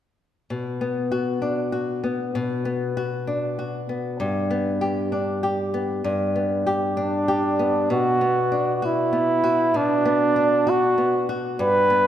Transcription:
0.50 2.34 B2 soft
0.81 2.03 B3 soft
1.12 1.71 F#4 soft
1.42 3.27 D4 soft
1.72 2.96 F#4 soft
2.04 2.65 B3 soft
2.35 4.20 B2 medium
2.65 3.89 B3 soft
2.97 3.57 F#4 soft
3.27 5.12 D4 soft
3.59 4.26 F#4 soft
3.89 4.50 B3 soft
4.20 6.03 G2 medium
4.50 5.73 B3 soft
4.81 5.42 G4 soft
5.12 6.96 D4 soft
5.43 6.65 G4 soft
5.74 6.35 B3 soft
6.04 7.89 G2 medium
6.36 7.59 B3 soft
6.67 7.27 G4 soft
6.97 8.51 D4 soft
6.97 7.87 D4 medium
7.28 7.96 G4 soft
7.59 8.21 B3 soft
7.90 9.73 B2 medium
7.90 8.75 F#4 medium
8.21 9.12 B3 soft
8.52 10.36 D4 soft
8.75 8.87 F#4 soft
8.82 9.78 E4 medium
8.82 9.42 F#4 soft
9.13 10.05 B3 soft
9.44 10.66 F#4 soft
9.74 11.59 B2 medium
9.74 10.71 D4 medium
10.05 10.97 B3 soft
10.36 12.07 D4 soft
10.67 11.28 F#4 soft
10.67 11.34 F#4 medium
10.98 11.90 B3 soft
11.29 11.66 F#4 soft
11.59 12.07 G2 medium
11.59 12.07 B4 loud
11.90 12.07 B3 soft

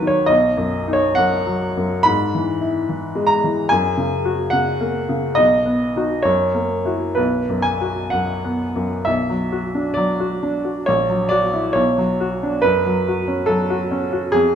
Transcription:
0.00 0.26 D#2 soft
0.00 0.02 D#3 soft
0.00 0.29 D#3 soft
0.00 0.19 F#3 soft
0.00 0.32 F#4 soft
0.00 0.32 A#4 medium
0.00 0.32 B4 medium
0.07 0.29 C#5 medium
0.26 2.02 B1 soft
0.26 0.94 D#5 medium
0.57 1.05 F#2 soft
0.88 1.35 D#4 soft
0.93 1.16 C#5 medium
1.15 1.65 F#2 soft
1.15 2.05 F#5 medium
1.46 1.94 F#3 soft
1.77 2.06 F#2 soft
2.03 3.65 G#2 soft
2.03 3.28 B5 medium
2.35 2.78 E3 soft
2.61 3.05 E4 soft
2.89 3.32 E3 soft
3.15 3.59 G#3 soft
3.27 3.69 A#5 medium
3.44 3.70 E3 soft
3.69 5.34 F#2 soft
3.69 4.52 G#5 medium
3.97 4.42 C#3 soft
4.25 4.70 F#4 soft
4.50 4.98 C#3 soft
4.50 4.94 F#5 medium
4.80 5.26 A#3 soft
5.09 5.38 C#3 soft
5.35 6.23 B1 soft
5.35 6.24 D#5 medium
5.66 6.13 B3 soft
5.96 6.23 D#4 soft
5.96 6.23 F#4 soft
6.23 7.14 F#2 soft
6.23 7.15 C#5 medium
6.55 7.04 A#3 soft
6.85 7.14 E4 soft
6.85 7.14 F#4 soft
7.15 9.02 B1 soft
7.15 8.58 B4 medium
7.49 8.00 F#2 soft
7.62 8.11 G#5 medium
7.81 8.31 F#4 soft
8.10 8.63 F#2 soft
8.10 9.05 F#5 medium
8.44 8.94 B3 soft
8.76 9.06 F#2 soft
9.05 10.83 B1 soft
9.05 9.96 E5 medium
9.29 9.65 F#3 soft
9.52 9.88 F#4 soft
9.75 10.10 D4 soft
9.94 10.33 F#3 soft
9.94 10.85 D5 medium
10.20 10.56 F#4 soft
10.43 10.78 D4 soft
10.65 10.87 F#4 soft
10.86 11.74 A#1 soft
10.86 11.31 C#5 medium
11.09 11.45 F#3 soft
11.29 11.67 F#4 soft
11.29 11.74 D5 medium
11.53 11.76 E4 soft
11.73 12.62 B1 soft
11.73 12.63 C#5 medium
11.98 12.34 F#3 soft
12.20 12.56 F#4 soft
12.43 12.65 D4 soft
12.62 14.30 F#2 soft
12.62 13.47 B4 medium
12.86 13.20 F#3 soft
13.08 13.41 F#4 soft
13.28 13.61 C#4 soft
13.46 13.82 F#3 soft
13.46 14.33 A4 medium
13.70 14.04 F#4 soft
13.91 14.26 C#4 soft
14.13 14.34 F#4 soft
14.32 14.55 F2 soft
14.32 14.55 G#4 medium

